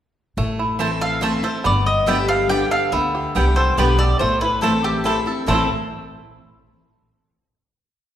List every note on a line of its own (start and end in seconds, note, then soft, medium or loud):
0.37 1.35 A1 medium
0.37 1.18 A2 medium
0.37 0.79 A3 medium
0.59 1.19 E4 medium
0.79 1.20 E3 medium
0.79 0.89 A3 medium
0.79 1.21 A3 medium
0.79 1.21 C4 medium
0.79 0.89 E4 medium
0.79 1.21 E4 medium
0.79 0.89 C5 loud
0.79 0.90 A5 loud
1.01 1.43 A4 medium
1.01 1.22 F5 medium
1.21 1.43 E3 medium
1.21 1.64 A3 medium
1.21 1.43 A3 medium
1.21 1.32 A3 medium
1.21 1.43 C4 loud
1.21 1.32 E4 medium
1.21 1.42 E4 loud
1.21 1.32 C5 medium
1.21 1.44 E5 medium
1.21 1.32 A5 loud
1.43 1.65 C4 soft
1.43 1.64 E4 medium
1.43 1.65 A4 medium
1.43 1.64 C5 medium
1.64 2.63 G1 medium
1.64 2.46 G2 medium
1.64 2.07 B3 medium
1.64 1.86 D5 medium
1.86 2.07 D#5 medium
2.06 2.48 D3 medium
2.06 2.48 G3 medium
2.06 2.17 B3 medium
2.06 2.68 B3 medium
2.06 2.48 B3 loud
2.06 2.17 G4 loud
2.06 2.49 G4 loud
2.06 2.17 D5 medium
2.06 2.28 E5 medium
2.06 2.17 G5 loud
2.28 2.70 A4 medium
2.28 2.49 F5 loud
2.49 2.90 D3 loud
2.49 2.91 G3 medium
2.49 2.59 B3 medium
2.49 2.91 B3 loud
2.49 3.10 G4 medium
2.49 2.60 G4 medium
2.49 2.91 G4 loud
2.49 2.60 D5 medium
2.49 2.71 G5 medium
2.49 2.60 G5 loud
2.71 3.31 A4 medium
2.71 2.92 F5 medium
2.92 3.25 D2 medium
2.92 3.34 D3 medium
2.92 3.34 B3 medium
2.92 3.53 E5 medium
3.15 3.74 G4 medium
3.35 3.72 C2 medium
3.35 3.76 D3 medium
3.35 3.76 G3 medium
3.35 3.77 B3 medium
3.35 3.45 B3 medium
3.35 3.76 B3 medium
3.35 3.45 G4 medium
3.35 3.77 G4 medium
3.35 3.45 D5 medium
3.35 3.45 G5 loud
3.56 3.98 A4 medium
3.56 3.77 C5 medium
3.77 4.14 B1 medium
3.77 3.98 D3 medium
3.77 3.99 G3 medium
3.77 3.87 B3 medium
3.77 4.20 B3 medium
3.77 3.99 B3 loud
3.77 3.87 G4 medium
3.77 3.98 G4 medium
3.77 3.98 B4 medium
3.77 3.88 D5 loud
3.77 3.88 G5 loud
3.99 4.21 B3 soft
3.99 4.19 G4 medium
3.99 4.21 A4 medium
3.99 4.19 D5 loud
4.19 5.18 A1 medium
4.19 5.01 A2 medium
4.19 4.62 A3 medium
4.19 4.41 C5 medium
4.41 5.01 E4 medium
4.41 4.61 B4 medium
4.61 5.03 E3 medium
4.61 5.03 A3 medium
4.61 4.72 A3 medium
4.61 5.23 A3 medium
4.61 5.04 C4 medium
4.61 4.72 E4 loud
4.61 5.04 E4 loud
4.61 4.83 A4 medium
4.61 4.72 C5 medium
4.61 4.73 A5 loud
4.84 5.05 G4 medium
4.84 5.26 A4 medium
5.04 5.25 E3 medium
5.04 5.26 A3 medium
5.04 5.15 A3 medium
5.04 5.26 C4 medium
5.04 5.48 E4 medium
5.04 5.15 E4 medium
5.04 5.25 E4 loud
5.04 5.18 A4 medium
5.04 5.15 C5 loud
5.04 5.15 A5 medium
5.26 5.47 C4 soft
5.26 5.46 E4 medium
5.26 5.48 A4 medium
5.46 5.68 A1 medium
5.46 5.64 A2 medium
5.46 5.65 E3 medium
5.46 5.65 A3 medium
5.46 5.68 A3 medium
5.46 5.65 C4 medium
5.46 5.69 C4 medium
5.46 5.65 E4 medium
5.46 5.66 E4 loud
5.46 5.68 A4 medium
5.46 5.66 C5 medium
5.46 5.66 A5 medium
5.52 5.70 E4 medium
5.52 5.71 A4 medium